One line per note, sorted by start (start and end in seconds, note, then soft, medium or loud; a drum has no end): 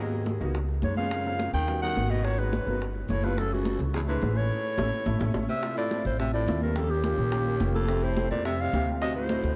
0.00 0.52 D#2 medium
0.00 0.35 G#2 medium
0.00 0.28 A#3 medium
0.00 0.28 B3 medium
0.00 0.28 D#4 medium
0.00 0.28 F#4 medium
0.00 0.52 G#4 medium
0.12 high bongo soft
0.12 high conga soft
0.26 high bongo medium
0.26 high conga medium
0.40 0.80 C#2 medium
0.40 0.55 A#3 medium
0.40 0.55 B3 medium
0.40 0.55 D#4 medium
0.40 0.55 F#4 medium
0.40 high bongo soft
0.40 high conga soft
0.54 high bongo medium
0.54 high conga soft
0.69 high bongo soft
0.69 high conga soft
0.82 1.48 F#2 medium
0.82 0.97 G#2 medium
0.82 0.97 C#5 medium
0.82 high bongo soft
0.82 low bongo medium
0.82 high conga medium
0.97 1.50 C#3 medium
0.97 1.07 G#3 medium
0.97 1.07 B3 medium
0.97 1.07 C#4 medium
0.97 1.07 F4 medium
0.97 1.50 F5 medium
0.97 high conga medium
1.11 1.22 G#3 medium
1.11 1.22 A#3 medium
1.11 1.22 C4 medium
1.11 1.22 F4 medium
1.11 high bongo medium
1.11 high conga soft
1.25 1.56 G#3 medium
1.25 1.56 A#3 medium
1.25 1.56 C4 medium
1.25 1.56 F4 medium
1.25 high bongo soft
1.25 high conga soft
1.39 high bongo medium
1.39 high conga medium
1.53 1.93 D#2 medium
1.53 1.80 D#3 medium
1.53 1.80 G5 loud
1.53 high bongo soft
1.53 high conga soft
1.68 1.78 G3 medium
1.68 1.78 B3 medium
1.68 1.78 C#4 medium
1.68 1.78 F#4 medium
1.68 high bongo medium
1.68 high conga soft
1.82 2.12 D#3 medium
1.82 1.92 G3 medium
1.82 1.92 B3 medium
1.82 1.92 C#4 medium
1.82 1.92 F#4 medium
1.82 2.12 F#5 medium
1.82 high bongo soft
1.82 high conga soft
1.96 2.61 G#1 medium
1.96 2.16 G3 medium
1.96 2.16 B3 medium
1.96 2.16 C#4 medium
1.96 2.16 F#4 medium
1.96 high bongo soft
1.96 low bongo medium
1.96 high conga medium
2.10 2.26 B2 medium
2.10 2.25 D#5 medium
2.24 2.41 A#2 medium
2.24 2.54 A#3 medium
2.24 2.54 B3 medium
2.24 2.54 C#4 medium
2.24 2.54 F#4 medium
2.24 2.40 C#5 medium
2.24 high bongo medium
2.24 high conga soft
2.38 2.81 G#2 medium
2.38 2.81 B4 medium
2.38 high bongo soft
2.38 high conga soft
2.53 high bongo medium
2.53 high conga medium
2.67 3.06 G1 medium
2.67 2.81 A#3 medium
2.67 2.81 B3 medium
2.67 2.81 C#4 medium
2.67 2.81 F#4 medium
2.67 high bongo soft
2.67 high conga soft
2.81 high bongo medium
2.81 high conga soft
2.95 high bongo soft
2.95 high conga soft
3.09 3.74 F#1 medium
3.09 3.26 A2 medium
3.09 3.26 C#5 medium
3.09 high bongo soft
3.09 low bongo medium
3.09 high conga medium
3.23 3.40 G2 medium
3.23 3.33 A3 medium
3.23 3.33 B3 medium
3.23 3.33 E4 medium
3.23 3.33 F4 medium
3.23 3.40 B4 medium
3.23 high conga medium
3.37 3.54 F#2 medium
3.37 3.47 A3 medium
3.37 3.47 C#4 medium
3.37 3.47 E4 medium
3.37 3.47 G#4 medium
3.37 3.54 A4 loud
3.37 high bongo medium
3.37 high conga soft
3.51 3.80 C#2 medium
3.51 3.81 A3 medium
3.51 3.81 C#4 medium
3.51 3.81 E4 medium
3.51 3.80 F#4 medium
3.51 3.81 G#4 medium
3.51 high bongo soft
3.51 high conga soft
3.65 high bongo medium
3.65 high conga loud
3.79 4.19 C#2 medium
3.79 high bongo soft
3.79 high conga soft
3.93 4.01 E2 medium
3.93 4.03 A3 medium
3.93 4.03 C#4 medium
3.93 4.04 E4 medium
3.93 4.04 G#4 medium
3.93 4.01 G#4 medium
3.93 high bongo medium
3.93 high conga soft
4.07 4.38 G#2 medium
4.07 4.17 A3 medium
4.07 4.17 C#4 medium
4.07 4.17 E4 medium
4.07 4.18 G#4 medium
4.07 4.38 B4 medium
4.07 high bongo soft
4.07 high conga soft
4.21 4.48 A1 medium
4.21 4.41 A3 medium
4.21 4.42 C#4 medium
4.21 4.42 E4 medium
4.21 4.42 G#4 medium
4.21 high bongo soft
4.21 low bongo medium
4.21 high conga medium
4.37 5.35 A2 medium
4.37 5.35 C#5 medium
4.78 4.89 A1 medium
4.78 4.87 A3 medium
4.78 4.87 C#4 medium
4.78 4.87 E4 medium
4.78 high bongo loud
4.78 high conga medium
5.06 5.17 A1 medium
5.06 5.15 A3 medium
5.06 5.15 C#4 medium
5.06 5.15 E4 medium
5.06 high bongo medium
5.06 high conga medium
5.19 5.31 A1 medium
5.19 5.29 A3 medium
5.19 5.29 C#4 loud
5.19 5.29 E4 medium
5.19 high bongo loud
5.19 high conga medium
5.34 5.45 A1 medium
5.34 5.44 A3 medium
5.34 5.44 C#4 medium
5.34 5.44 E4 medium
5.34 high bongo loud
5.34 high conga loud
5.48 5.75 C3 medium
5.48 5.75 E5 medium
5.62 5.82 A3 medium
5.62 5.82 C4 medium
5.62 5.83 E4 medium
5.62 5.83 F4 medium
5.62 high bongo medium
5.62 high conga soft
5.77 6.03 A2 medium
5.77 6.04 D5 medium
5.77 high bongo soft
5.77 high conga soft
5.91 6.11 A3 medium
5.91 6.11 C4 medium
5.91 6.11 E4 medium
5.91 6.11 F4 medium
5.91 high bongo medium
5.91 high conga medium
6.05 6.44 A1 medium
6.05 6.18 A2 medium
6.05 6.19 C5 medium
6.05 high bongo soft
6.05 high conga soft
6.19 6.32 C3 medium
6.19 6.39 A3 medium
6.19 6.39 C4 medium
6.19 6.39 E4 medium
6.19 6.39 F4 medium
6.19 6.33 E5 medium
6.19 high bongo medium
6.19 high conga soft
6.33 6.60 A2 medium
6.33 6.60 D5 medium
6.33 high bongo soft
6.33 high conga soft
6.47 7.13 D#2 medium
6.47 6.67 A3 medium
6.47 6.67 C4 medium
6.47 6.67 E4 medium
6.47 6.68 F4 medium
6.47 high bongo soft
6.47 low bongo medium
6.47 high conga medium
6.62 6.77 G2 medium
6.62 6.79 A#4 medium
6.62 high conga medium
6.76 6.92 F2 medium
6.76 6.96 A#3 medium
6.76 6.95 C#4 medium
6.76 6.96 F4 medium
6.76 6.96 G4 medium
6.76 6.92 A4 loud
6.76 high bongo medium
6.76 high conga soft
6.90 7.75 D#2 medium
6.90 7.74 G4 loud
6.90 high bongo soft
6.90 high conga soft
7.03 7.23 A#3 medium
7.03 7.24 C#4 medium
7.03 7.24 F4 medium
7.03 7.24 G4 medium
7.03 high bongo medium
7.03 high conga loud
7.18 7.57 A#1 medium
7.18 high bongo soft
7.18 high conga soft
7.32 7.52 A#3 medium
7.32 7.52 C#4 medium
7.32 7.52 F4 medium
7.32 7.52 G4 medium
7.32 high bongo medium
7.32 high conga soft
7.46 high bongo soft
7.46 high conga soft
7.60 8.25 F1 medium
7.60 7.80 A#3 medium
7.60 7.80 C#4 medium
7.60 7.80 F4 medium
7.60 7.80 G4 medium
7.60 high bongo soft
7.60 low bongo medium
7.60 high conga medium
7.74 8.05 F2 medium
7.74 8.05 A4 medium
7.74 high conga medium
7.89 8.08 A3 medium
7.89 8.08 C4 medium
7.89 8.08 E4 medium
7.89 8.09 G4 medium
7.89 high bongo medium
7.89 high conga soft
8.02 8.30 A2 medium
8.02 8.30 C5 loud
8.02 high bongo soft
8.02 high conga soft
8.17 8.37 A3 medium
8.17 8.37 C4 medium
8.17 8.37 E4 medium
8.17 8.37 G4 medium
8.17 high bongo medium
8.17 high conga medium
8.31 8.70 F2 medium
8.31 8.44 A#2 medium
8.31 8.44 D5 medium
8.31 high bongo soft
8.31 high conga soft
8.45 8.60 C3 medium
8.45 8.65 A3 medium
8.45 8.65 C4 medium
8.45 8.65 E4 medium
8.45 8.65 G4 medium
8.45 8.62 E5 medium
8.45 high bongo medium
8.45 high conga soft
8.59 8.88 C3 medium
8.59 8.88 F5 loud
8.59 high bongo soft
8.59 high conga soft
8.73 9.38 D2 medium
8.73 8.93 A3 medium
8.73 8.93 C4 medium
8.73 8.93 E4 medium
8.73 8.93 G4 medium
8.73 high bongo soft
8.73 low bongo medium
8.73 high conga medium
9.01 9.15 C3 medium
9.01 9.21 A3 medium
9.01 9.21 C4 medium
9.01 9.22 D#4 medium
9.01 9.22 F#4 medium
9.01 9.15 D#5 loud
9.01 high bongo medium
9.01 high conga soft
9.15 9.56 A2 medium
9.15 9.56 C5 loud
9.15 high bongo soft
9.15 high conga soft
9.29 9.50 A3 medium
9.29 9.50 C4 medium
9.29 9.50 D#4 medium
9.29 9.50 F#4 medium
9.29 high bongo medium
9.29 high conga medium
9.43 9.56 D2 medium
9.43 high bongo soft
9.43 high conga soft